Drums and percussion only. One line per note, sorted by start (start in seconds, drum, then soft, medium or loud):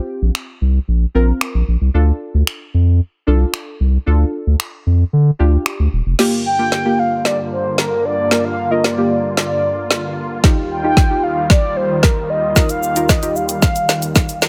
0.35 finger snap loud
1.41 finger snap loud
2.47 finger snap loud
3.54 finger snap loud
4.60 finger snap loud
5.66 finger snap loud
6.19 snare medium
6.19 crash medium
6.72 snare medium
7.25 snare medium
7.78 snare medium
8.31 snare medium
8.84 snare medium
9.37 snare medium
9.91 snare medium
10.44 kick loud
10.44 snare medium
10.97 kick loud
10.97 snare medium
11.50 kick loud
11.50 snare medium
12.03 kick loud
12.03 snare medium
12.56 kick loud
12.56 snare medium
12.56 shaker medium
12.69 closed hi-hat soft
12.69 shaker soft
12.83 shaker medium
12.96 closed hi-hat medium
12.96 shaker medium
13.09 kick loud
13.09 snare medium
13.09 shaker medium
13.23 closed hi-hat medium
13.23 shaker medium
13.36 shaker soft
13.49 closed hi-hat medium
13.49 shaker medium
13.62 kick loud
13.62 snare medium
13.62 shaker medium
13.76 closed hi-hat medium
13.76 shaker medium
13.89 snare medium
13.89 shaker medium
14.02 closed hi-hat medium
14.02 shaker medium
14.15 kick loud
14.15 snare medium
14.15 shaker medium
14.29 closed hi-hat soft
14.29 shaker medium
14.42 snare medium
14.42 shaker medium